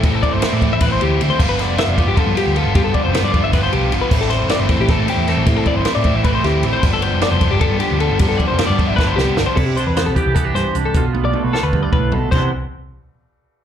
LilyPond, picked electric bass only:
\new Staff \with { instrumentName = "Picked electric bass" } { \clef bass \time 7/8 \key c \major \tempo 4 = 154 a,8 r16 g,,16 r16 a,8 a,,8. d,8 d,16 r16 | g,,8. f,,16 r16 f,,8 g,,8 g,16 r16 d,8 g,,16 | g,8 r16 f,,16 r16 g,8 g,,8. b,,8 g,,16 r16 | a,,8. g,,16 r16 g,,8 a,,8 a,16 r16 e,8 a,,16 |
a,8 r16 g,,16 r16 a,8 a,,8. d,8 a,,16 r16 | g,,8. f,,16 r16 f,,8 g,,8 g,16 r16 d,8 g,,16 | g,8 r16 f,,16 r16 g,8 g,,8. c,8 g,,16 r16 | c,8 r16 e,8 c,16 r16 c,8. g,16 r16 c,8 |
b,,8. b,,16 r16 b,,16 r16 d,8 r16 b,,8 b,,16 r16 | c,8 r2. | }